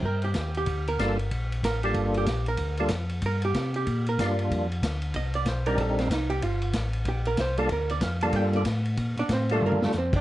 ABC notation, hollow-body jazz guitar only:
X:1
M:4/4
L:1/8
Q:"Swing" 1/4=188
K:Gm
V:1 name="Hollow-body jazz guitar"
B G2 G2 B3 | z2 B G2 G2 B- | B2 z2 B G2 G- | G B3 z4 |
e d c B A C E G | F2 z2 G B c A | B d f a g d z2 | z [Dd] [Cc] [A,A] [B,B] [A,A] [Cc] [Dd] |]